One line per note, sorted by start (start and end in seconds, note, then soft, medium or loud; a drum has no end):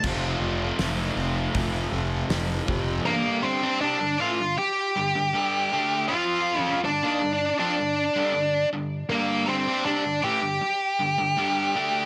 0.03 0.33 F1 medium
0.03 3.04 F2 medium
0.03 3.04 C3 medium
0.03 3.05 F3 medium
0.03 3.05 A3 medium
0.03 3.05 C4 loud
0.03 kick loud
0.03 crash loud
0.40 0.70 F1 medium
0.79 1.09 F1 medium
0.79 snare loud
0.79 open hi-hat medium
1.16 1.47 F1 medium
1.54 1.85 F1 medium
1.54 kick medium
1.54 open hi-hat medium
1.92 2.22 F1 medium
2.29 2.60 F1 medium
2.29 snare loud
2.29 open hi-hat medium
2.67 2.98 F1 medium
2.67 3.04 F2 medium
2.67 3.04 C3 medium
2.67 3.03 F3 loud
2.67 kick medium
3.05 3.61 G2 loud
3.05 3.62 D3 loud
3.05 3.61 G3 loud
3.05 3.42 A#3 medium
3.05 3.45 A#4 loud
3.43 3.79 C4 medium
3.43 3.81 C5 medium
3.63 3.80 G3 medium
3.63 3.81 D4 loud
3.80 4.00 C3 loud
3.80 4.00 G3 loud
3.80 4.16 D4 medium
3.80 4.20 D5 medium
4.00 4.19 G2 medium
4.00 4.20 D3 medium
4.20 4.38 A2 medium
4.20 4.38 E3 loud
4.20 4.55 F4 medium
4.20 4.57 F5 loud
4.40 4.56 G2 medium
4.40 4.58 D3 medium
4.58 6.05 G4 medium
4.58 6.04 G5 loud
4.58 muted distorted electric guitar stroke medium
4.96 5.14 G2 medium
4.96 5.14 D3 medium
5.15 5.32 G2 medium
5.15 5.33 D3 medium
5.33 5.70 G2 medium
5.33 5.70 D3 medium
5.33 5.70 G3 loud
5.72 6.08 D3 loud
5.72 6.08 A3 loud
5.72 6.08 D4 loud
6.08 6.83 F3 medium
6.08 6.84 C4 loud
6.08 6.80 F4 medium
6.08 6.84 F4 loud
6.08 6.60 F5 loud
6.60 6.79 D#5 loud
6.84 7.03 G2 medium
6.84 7.03 D3 medium
6.84 7.55 D4 medium
6.84 7.58 D5 loud
7.03 7.20 D#3 loud
7.03 7.21 A#3 loud
7.21 7.51 G2 medium
7.21 7.52 D3 medium
7.59 7.77 F3 loud
7.59 7.77 C4 loud
7.59 8.68 D4 medium
7.59 8.68 D5 medium
7.79 8.08 G2 medium
7.79 8.09 D3 medium
8.16 8.33 G2 medium
8.16 8.34 D3 medium
8.34 8.64 G2 medium
8.34 8.65 D3 medium
8.73 9.03 G2 medium
8.73 9.03 D3 medium
9.09 9.66 G2 loud
9.09 9.66 D3 loud
9.09 9.66 G3 loud
9.09 9.45 A#3 medium
9.09 9.50 A#4 loud
9.48 9.83 C4 medium
9.48 9.83 C5 medium
9.67 9.85 G3 medium
9.67 9.85 D4 loud
9.85 10.03 C3 loud
9.85 10.04 G3 loud
9.85 10.20 D4 medium
9.85 10.24 D5 medium
10.04 10.23 G2 medium
10.04 10.23 D3 medium
10.23 10.41 A2 loud
10.23 10.41 E3 loud
10.23 12.05 G4 loud
10.23 12.05 G5 loud
10.42 10.60 G2 medium
10.42 10.61 D3 medium
10.61 muted distorted electric guitar stroke medium
10.99 11.17 G2 medium
10.99 11.17 D3 medium
11.18 11.36 G2 medium
11.18 11.37 D3 medium
11.37 11.73 G2 medium
11.37 11.73 D3 medium
11.37 11.74 G3 loud
11.75 12.05 D3 medium
11.75 12.05 A3 loud
11.75 12.05 D4 loud